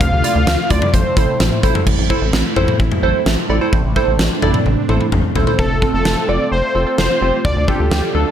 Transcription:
Already playing: analog synth lead F5
0.01 analog synth bass D2, analog synth pad D3 A3 F4, kick, closed hi-hat
0.12 analog synth bass D2
0.24 synth keys E4 F4 D5, closed hi-hat
0.36 analog synth bass D2
0.47 analog synth bass D2, snare, closed hi-hat
0.70 analog synth bass D2, synth keys E4 F4 D5, analog synth lead D5, kick, closed hi-hat
0.82 mid tom
0.94 analog synth bass A1, analog synth pad C4 E4, analog synth lead C5, kick, closed hi-hat
1.17 analog synth bass A1, synth keys E4 A4 C5, kick, closed hi-hat
1.40 analog synth bass A1, snare, closed hi-hat, mid tom
1.63 analog synth bass A1, synth keys E4 A4 C5, kick, closed hi-hat
1.75 mid tom
1.86 analog synth bass A1, analog synth pad A3 C4 E4, kick, crash
1.98 analog synth bass A1
2.10 synth keys E4 A4 C5, kick
2.22 analog synth bass A1
2.33 analog synth bass A1, snare
2.56 analog synth bass A1, synth keys E4 A4 C5, mid tom
2.68 mid tom
2.80 analog synth bass A1, kick
2.92 mid tom
3.03 analog synth bass A1, synth keys E4 A4 C5
3.26 analog synth bass A1, snare
3.49 analog synth bass A1, synth keys E4 A4 D5
3.61 synth keys E4 A4 C5
3.73 analog synth bass A1, analog synth pad D4, kick
3.84 analog synth bass A1
3.96 synth keys E4 A4 C5, kick
4.08 analog synth bass A1
4.19 analog synth bass A1, snare
4.42 analog synth bass A1, synth keys E4 A4 D5, mid tom
4.54 mid tom
4.66 analog synth bass A1, high tom
4.89 analog synth bass A1, synth keys E4 A4 C5, mid tom
5.01 mid tom
5.12 analog synth bass A1, mid tom
5.35 analog synth bass A1, synth keys E4 A4 C5, floor tom
5.47 synth keys E4 A4 C5, floor tom
5.59 analog synth bass F1, analog synth pad A3 C4 F4, analog synth lead A4, kick
5.70 analog synth bass F1
5.82 synth keys C4 F4 A4, kick
5.94 analog synth bass F1, analog synth lead A4
6.05 analog synth bass F1, snare
6.29 analog synth bass F1, synth keys C4 F4 A4, analog synth lead D5
6.52 analog synth bass F1, analog synth lead C5
6.75 analog synth bass F1, synth keys C4 F4 A4
6.87 synth keys C4 F4 A4
6.98 analog synth bass F1, analog synth lead C5, snare
7.21 analog synth bass F1, synth keys C4 F4 G4
7.45 analog synth bass D2, analog synth pad D3 D4 A4, analog synth lead D5, kick
7.56 analog synth bass D2
7.68 synth keys D4 F4 A4, analog synth lead G4, kick
7.80 analog synth bass D2
7.91 analog synth bass D2, snare
8.15 analog synth bass D2, synth keys D4 F4 A4, analog synth lead A4

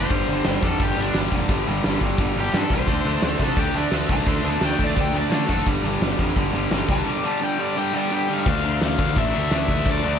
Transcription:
Already playing: overdriven electric guitar D3 A3 D4 C5
0.10 picked electric bass G1, overdriven electric guitar G2 D3 G3, kick, crash
0.29 picked electric bass G1, overdriven electric guitar G2 D3 G3
0.44 picked electric bass G1, overdriven electric guitar G2 D3 G3, snare, crash
0.62 picked electric bass F2, overdriven electric guitar G2 D3 G3 A4, kick
0.79 picked electric bass G1, overdriven electric guitar G2 D3 G3, kick, crash
0.84 overdriven electric guitar G4
0.98 picked electric bass G1, overdriven electric guitar G2 D3 G3 D4
1.14 picked electric bass G1, overdriven electric guitar G2 D3 G3, snare, crash
1.32 picked electric bass F1, overdriven electric guitar G2 D3 G3, kick
1.48 picked electric bass G1, overdriven electric guitar G2 D3 G3, kick, crash
1.67 picked electric bass G1, overdriven electric guitar G2 D3 G3
1.84 picked electric bass G1, overdriven electric guitar G2 D3 G3, snare, crash
2.01 picked electric bass G1, overdriven electric guitar G2 D3 G3, kick
2.18 picked electric bass G1, overdriven electric guitar G2 D3 G3, kick, crash
2.37 picked electric bass G1, overdriven electric guitar G2 D3 G3 G4
2.53 overdriven electric guitar G2 D3 G3 A4, picked electric bass G2, snare, crash
2.70 picked electric bass C2, overdriven electric guitar G2 D3 G3, kick
2.75 overdriven electric guitar C5
2.87 picked electric bass D2, overdriven electric guitar D3 A3 D4, kick, crash
3.05 picked electric bass D2, overdriven electric guitar D3 A3 D4
3.22 picked electric bass D2, overdriven electric guitar D3 A3 D4, snare, crash
3.39 picked electric bass C3, overdriven electric guitar D3 A3 D4 A4, kick
3.57 picked electric bass D2, overdriven electric guitar D3 A3 D4 G4, kick, crash
3.73 picked electric bass D2, overdriven electric guitar D3 A3 D4
3.91 picked electric bass D2, overdriven electric guitar D3 A3 D4, snare, crash
4.09 picked electric bass C2, overdriven electric guitar D3 A3 D4 A5, kick
4.26 picked electric bass D2, overdriven electric guitar D3 A3 D4 C6, kick, crash
4.44 picked electric bass D2, overdriven electric guitar D3 A3 D4 A5
4.61 picked electric bass D2, overdriven electric guitar D3 A3 D4, snare, crash
4.65 overdriven electric guitar G5
4.78 picked electric bass D2, overdriven electric guitar D3 A3 D4, kick
4.84 overdriven electric guitar D5
4.95 picked electric bass D2, overdriven electric guitar D3 A3 D4, kick, crash
5.01 overdriven electric guitar G5
5.13 picked electric bass D2, overdriven electric guitar D3 A3 D4
5.17 overdriven electric guitar D5
5.30 picked electric bass D3, overdriven electric guitar D3 A3 D4 A4, snare, crash
5.49 picked electric bass F#1, overdriven electric guitar D3 A3 D4, kick
5.66 picked electric bass G1, overdriven electric guitar G2 D3 G3, kick, crash
5.83 picked electric bass G1, overdriven electric guitar G2 D3 G3
6.01 picked electric bass G1, overdriven electric guitar G2 D3 G3, snare, crash
6.18 picked electric bass F2, overdriven electric guitar G2 D3 G3, kick
6.36 picked electric bass G1, overdriven electric guitar G2 D3 G3, kick, crash
6.53 picked electric bass G1, overdriven electric guitar G2 D3 G3
6.71 picked electric bass G1, overdriven electric guitar G2 D3 G3, snare, crash
6.89 picked electric bass C#2, overdriven electric guitar G2 D3 G3 A5, kick
7.06 overdriven electric guitar G2 D3 G3 D6
7.23 overdriven electric guitar G2 D3 G3 A5
7.41 overdriven electric guitar G2 D3 G3 G5
7.58 overdriven electric guitar G2 D3 G3 D5
7.76 overdriven electric guitar G2 D3 G3 G5
7.93 overdriven electric guitar G2 D3 G3 D5
7.98 overdriven electric guitar G5
8.11 overdriven electric guitar G2 D3 G3 G4
8.29 overdriven electric guitar G2 D3 G3
8.34 overdriven electric guitar F5
8.46 picked electric bass D2, overdriven electric guitar D3 A3 D4, kick, crash
8.64 overdriven electric guitar D3 A3 D4, crash
8.81 picked electric bass D2, overdriven electric guitar D3 A3 D4, snare, crash
8.86 overdriven electric guitar F5
8.98 picked electric bass D2, overdriven electric guitar D3 A3 D4, kick, crash
9.16 picked electric bass A1, overdriven electric guitar D3 A3 D4 E5, kick, crash
9.33 picked electric bass D2, overdriven electric guitar D3 A3 D4, crash
9.51 picked electric bass D2, overdriven electric guitar D3 A3 D4 E5, snare, crash
9.68 picked electric bass D2, overdriven electric guitar D3 A3 D4, kick, crash
9.85 picked electric bass D2, overdriven electric guitar D3 A3 D4, kick, crash
9.90 overdriven electric guitar D5
10.03 picked electric bass D2, overdriven electric guitar D3 A3 D4, crash

